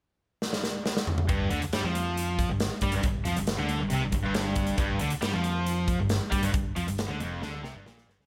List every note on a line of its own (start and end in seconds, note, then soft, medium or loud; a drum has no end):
0.42 snare medium
0.53 snare medium
0.64 snare medium
0.86 snare medium
0.97 snare medium
1.07 mid tom medium
1.18 mid tom medium
1.28 1.49 G1 medium
1.28 1.50 G2 medium
1.28 kick loud
1.28 closed hi-hat medium
1.50 1.61 D2 medium
1.50 1.61 D3 medium
1.50 closed hi-hat medium
1.61 muted overdriven electric guitar stroke medium
1.61 muted fingered electric bass stroke soft
1.61 muted distorted electric guitar stroke soft
1.61 closed hi-hat medium
1.73 1.83 G2 medium
1.73 1.83 G3 loud
1.73 snare loud
1.73 closed hi-hat medium
1.83 2.45 F2 medium
1.83 2.49 F3 medium
1.95 closed hi-hat medium
2.17 closed hi-hat medium
2.39 kick medium
2.39 closed hi-hat medium
2.49 2.70 G1 medium
2.49 2.67 G2 medium
2.60 snare loud
2.60 closed hi-hat medium
2.81 2.92 G2 medium
2.81 2.93 G3 loud
2.81 kick medium
2.81 closed hi-hat medium
2.92 3.03 G1 medium
2.92 3.02 G2 loud
2.92 closed hi-hat medium
2.96 3.05 G2 medium
3.03 3.24 G1 medium
3.03 3.21 G2 medium
3.03 kick loud
3.03 closed hi-hat medium
3.07 3.23 G2 medium
3.25 3.36 F2 medium
3.25 3.36 F3 loud
3.25 closed hi-hat medium
3.36 3.57 G1 medium
3.36 3.54 G2 medium
3.36 closed hi-hat medium
3.47 snare loud
3.47 closed hi-hat medium
3.58 3.79 D2 loud
3.58 3.80 D3 medium
3.69 closed hi-hat medium
3.79 3.91 G1 medium
3.79 3.91 G2 medium
3.90 4.02 C2 medium
3.90 4.01 C3 medium
3.90 closed hi-hat medium
4.01 4.12 G1 medium
4.01 4.11 G2 medium
4.12 4.23 G1 medium
4.12 4.22 G2 medium
4.12 kick medium
4.12 closed hi-hat medium
4.23 4.76 G1 medium
4.23 4.76 G2 loud
4.34 snare loud
4.34 closed hi-hat medium
4.56 kick medium
4.56 closed hi-hat medium
4.67 closed hi-hat medium
4.77 4.99 G1 medium
4.77 5.00 G2 loud
4.77 kick loud
4.77 closed hi-hat medium
4.99 5.11 D2 medium
4.99 5.11 D3 loud
4.99 closed hi-hat medium
5.10 muted overdriven electric guitar stroke medium
5.10 muted fingered electric bass stroke soft
5.10 muted distorted electric guitar stroke medium
5.10 closed hi-hat medium
5.22 5.33 G2 medium
5.22 5.33 G3 loud
5.22 snare loud
5.22 closed hi-hat medium
5.33 5.96 F2 loud
5.33 5.99 F3 medium
5.44 closed hi-hat medium
5.66 closed hi-hat medium
5.88 kick medium
5.88 closed hi-hat medium
5.99 6.20 G1 medium
5.99 6.17 G2 medium
6.09 snare loud
6.09 closed hi-hat medium
6.31 6.42 G2 medium
6.31 6.42 G3 loud
6.31 kick medium
6.31 closed hi-hat medium
6.43 6.53 G1 medium
6.43 6.52 G2 loud
6.43 closed hi-hat medium
6.53 6.75 G1 medium
6.53 6.71 G2 medium
6.53 kick loud
6.53 closed hi-hat medium
6.76 6.87 F2 medium
6.76 6.87 F3 medium
6.76 closed hi-hat medium
6.87 7.08 G1 medium
6.87 7.05 G2 medium
6.87 closed hi-hat medium
6.98 snare loud
6.98 closed hi-hat medium
7.08 7.20 D2 medium
7.08 7.19 D3 medium
7.20 7.41 F1 medium
7.20 7.41 F2 loud
7.20 closed hi-hat medium
7.41 7.62 D2 medium
7.41 7.63 D3 medium
7.41 snare medium
7.63 7.74 C2 medium
7.63 7.74 C3 loud
7.63 snare medium
7.74 7.85 G1 medium
7.74 7.85 G2 loud
7.85 8.06 A#1 medium
7.85 8.07 A#2 medium
7.85 snare medium
7.98 snare medium
8.07 8.17 G1 medium
8.07 8.18 G2 loud
8.07 snare medium
8.17 8.26 C#2 medium
8.17 8.26 C#3 medium
8.17 snare medium